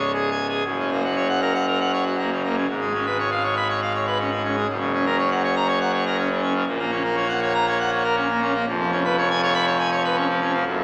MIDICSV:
0, 0, Header, 1, 2, 480
1, 0, Start_track
1, 0, Key_signature, 6, "major"
1, 0, Tempo, 509771
1, 626, Time_signature, 4, 2, 24, 8
1, 2532, Tempo, 498753
1, 10376, End_track
2, 0, Start_track
2, 0, Title_t, "Pipe organ"
2, 0, Program_c, 0, 19
2, 0, Note_on_c, 0, 25, 69
2, 0, Note_on_c, 0, 37, 68
2, 0, Note_on_c, 0, 73, 58
2, 110, Note_off_c, 0, 73, 0
2, 127, Note_on_c, 0, 68, 63
2, 277, Note_off_c, 0, 68, 0
2, 294, Note_on_c, 0, 80, 61
2, 443, Note_off_c, 0, 80, 0
2, 460, Note_on_c, 0, 68, 51
2, 584, Note_off_c, 0, 25, 0
2, 584, Note_off_c, 0, 37, 0
2, 599, Note_off_c, 0, 68, 0
2, 620, Note_on_c, 0, 30, 69
2, 621, Note_on_c, 0, 42, 72
2, 742, Note_on_c, 0, 49, 52
2, 850, Note_off_c, 0, 49, 0
2, 860, Note_on_c, 0, 58, 54
2, 969, Note_off_c, 0, 58, 0
2, 976, Note_on_c, 0, 66, 58
2, 1087, Note_off_c, 0, 66, 0
2, 1091, Note_on_c, 0, 73, 64
2, 1203, Note_off_c, 0, 73, 0
2, 1210, Note_on_c, 0, 78, 86
2, 1321, Note_off_c, 0, 78, 0
2, 1331, Note_on_c, 0, 70, 66
2, 1441, Note_off_c, 0, 70, 0
2, 1449, Note_on_c, 0, 78, 59
2, 1560, Note_off_c, 0, 78, 0
2, 1574, Note_on_c, 0, 70, 65
2, 1683, Note_off_c, 0, 70, 0
2, 1696, Note_on_c, 0, 78, 61
2, 1803, Note_off_c, 0, 78, 0
2, 1812, Note_on_c, 0, 73, 65
2, 1921, Note_off_c, 0, 73, 0
2, 1928, Note_on_c, 0, 66, 50
2, 2038, Note_off_c, 0, 66, 0
2, 2057, Note_on_c, 0, 58, 61
2, 2163, Note_off_c, 0, 58, 0
2, 2177, Note_on_c, 0, 49, 53
2, 2283, Note_off_c, 0, 49, 0
2, 2300, Note_on_c, 0, 58, 60
2, 2404, Note_off_c, 0, 58, 0
2, 2412, Note_on_c, 0, 49, 52
2, 2493, Note_off_c, 0, 30, 0
2, 2493, Note_off_c, 0, 42, 0
2, 2514, Note_off_c, 0, 49, 0
2, 2525, Note_on_c, 0, 44, 66
2, 2526, Note_on_c, 0, 32, 74
2, 2648, Note_on_c, 0, 56, 55
2, 2758, Note_off_c, 0, 56, 0
2, 2776, Note_on_c, 0, 61, 54
2, 2882, Note_off_c, 0, 61, 0
2, 2891, Note_on_c, 0, 71, 56
2, 2999, Note_off_c, 0, 71, 0
2, 3011, Note_on_c, 0, 73, 65
2, 3119, Note_off_c, 0, 73, 0
2, 3134, Note_on_c, 0, 77, 63
2, 3241, Note_off_c, 0, 77, 0
2, 3251, Note_on_c, 0, 73, 60
2, 3360, Note_off_c, 0, 73, 0
2, 3376, Note_on_c, 0, 83, 85
2, 3482, Note_off_c, 0, 83, 0
2, 3504, Note_on_c, 0, 73, 60
2, 3607, Note_off_c, 0, 73, 0
2, 3624, Note_on_c, 0, 77, 65
2, 3727, Note_off_c, 0, 77, 0
2, 3740, Note_on_c, 0, 73, 61
2, 3844, Note_off_c, 0, 73, 0
2, 3860, Note_on_c, 0, 71, 58
2, 3964, Note_off_c, 0, 71, 0
2, 3981, Note_on_c, 0, 61, 62
2, 4085, Note_off_c, 0, 61, 0
2, 4096, Note_on_c, 0, 56, 57
2, 4202, Note_off_c, 0, 56, 0
2, 4224, Note_on_c, 0, 61, 54
2, 4327, Note_off_c, 0, 61, 0
2, 4337, Note_on_c, 0, 56, 58
2, 4412, Note_off_c, 0, 44, 0
2, 4413, Note_off_c, 0, 32, 0
2, 4438, Note_off_c, 0, 56, 0
2, 4454, Note_on_c, 0, 30, 75
2, 4454, Note_on_c, 0, 42, 76
2, 4570, Note_on_c, 0, 49, 55
2, 4679, Note_off_c, 0, 49, 0
2, 4696, Note_on_c, 0, 61, 55
2, 4802, Note_off_c, 0, 61, 0
2, 4812, Note_on_c, 0, 70, 60
2, 4920, Note_off_c, 0, 70, 0
2, 4936, Note_on_c, 0, 73, 71
2, 5042, Note_off_c, 0, 73, 0
2, 5056, Note_on_c, 0, 78, 69
2, 5162, Note_off_c, 0, 78, 0
2, 5180, Note_on_c, 0, 73, 73
2, 5284, Note_off_c, 0, 73, 0
2, 5297, Note_on_c, 0, 82, 91
2, 5402, Note_off_c, 0, 82, 0
2, 5406, Note_on_c, 0, 73, 68
2, 5516, Note_off_c, 0, 73, 0
2, 5530, Note_on_c, 0, 78, 72
2, 5638, Note_off_c, 0, 78, 0
2, 5652, Note_on_c, 0, 73, 68
2, 5759, Note_off_c, 0, 73, 0
2, 5772, Note_on_c, 0, 70, 63
2, 5878, Note_off_c, 0, 70, 0
2, 5888, Note_on_c, 0, 61, 72
2, 5995, Note_off_c, 0, 61, 0
2, 6005, Note_on_c, 0, 49, 64
2, 6113, Note_off_c, 0, 49, 0
2, 6121, Note_on_c, 0, 61, 64
2, 6231, Note_off_c, 0, 61, 0
2, 6244, Note_on_c, 0, 49, 68
2, 6328, Note_off_c, 0, 30, 0
2, 6328, Note_off_c, 0, 42, 0
2, 6347, Note_off_c, 0, 49, 0
2, 6359, Note_on_c, 0, 46, 82
2, 6363, Note_on_c, 0, 34, 82
2, 6485, Note_on_c, 0, 58, 60
2, 6592, Note_off_c, 0, 58, 0
2, 6598, Note_on_c, 0, 61, 66
2, 6708, Note_off_c, 0, 61, 0
2, 6718, Note_on_c, 0, 70, 64
2, 6828, Note_off_c, 0, 70, 0
2, 6835, Note_on_c, 0, 73, 76
2, 6946, Note_off_c, 0, 73, 0
2, 6955, Note_on_c, 0, 78, 76
2, 7066, Note_off_c, 0, 78, 0
2, 7081, Note_on_c, 0, 73, 78
2, 7189, Note_off_c, 0, 73, 0
2, 7204, Note_on_c, 0, 82, 103
2, 7311, Note_off_c, 0, 82, 0
2, 7324, Note_on_c, 0, 73, 76
2, 7432, Note_off_c, 0, 73, 0
2, 7443, Note_on_c, 0, 78, 77
2, 7551, Note_off_c, 0, 78, 0
2, 7561, Note_on_c, 0, 73, 73
2, 7671, Note_off_c, 0, 73, 0
2, 7676, Note_on_c, 0, 70, 68
2, 7788, Note_off_c, 0, 70, 0
2, 7797, Note_on_c, 0, 61, 73
2, 7909, Note_off_c, 0, 61, 0
2, 7919, Note_on_c, 0, 58, 67
2, 8031, Note_off_c, 0, 58, 0
2, 8046, Note_on_c, 0, 61, 66
2, 8155, Note_off_c, 0, 61, 0
2, 8165, Note_on_c, 0, 58, 74
2, 8248, Note_off_c, 0, 46, 0
2, 8250, Note_off_c, 0, 34, 0
2, 8270, Note_off_c, 0, 58, 0
2, 8286, Note_on_c, 0, 29, 90
2, 8289, Note_on_c, 0, 41, 90
2, 8408, Note_on_c, 0, 53, 67
2, 8517, Note_off_c, 0, 53, 0
2, 8524, Note_on_c, 0, 61, 66
2, 8634, Note_off_c, 0, 61, 0
2, 8652, Note_on_c, 0, 71, 72
2, 8758, Note_off_c, 0, 71, 0
2, 8776, Note_on_c, 0, 73, 81
2, 8881, Note_off_c, 0, 73, 0
2, 8895, Note_on_c, 0, 80, 82
2, 9000, Note_off_c, 0, 80, 0
2, 9014, Note_on_c, 0, 73, 81
2, 9119, Note_off_c, 0, 73, 0
2, 9129, Note_on_c, 0, 83, 115
2, 9236, Note_off_c, 0, 83, 0
2, 9247, Note_on_c, 0, 73, 84
2, 9354, Note_off_c, 0, 73, 0
2, 9366, Note_on_c, 0, 80, 81
2, 9474, Note_off_c, 0, 80, 0
2, 9485, Note_on_c, 0, 73, 78
2, 9593, Note_off_c, 0, 73, 0
2, 9610, Note_on_c, 0, 71, 69
2, 9716, Note_off_c, 0, 71, 0
2, 9721, Note_on_c, 0, 61, 76
2, 9831, Note_off_c, 0, 61, 0
2, 9839, Note_on_c, 0, 53, 74
2, 9950, Note_off_c, 0, 53, 0
2, 9963, Note_on_c, 0, 61, 65
2, 10072, Note_off_c, 0, 61, 0
2, 10081, Note_on_c, 0, 53, 69
2, 10168, Note_off_c, 0, 29, 0
2, 10170, Note_off_c, 0, 41, 0
2, 10187, Note_off_c, 0, 53, 0
2, 10206, Note_on_c, 0, 42, 92
2, 10207, Note_on_c, 0, 30, 93
2, 10337, Note_on_c, 0, 49, 72
2, 10376, Note_off_c, 0, 30, 0
2, 10376, Note_off_c, 0, 42, 0
2, 10376, Note_off_c, 0, 49, 0
2, 10376, End_track
0, 0, End_of_file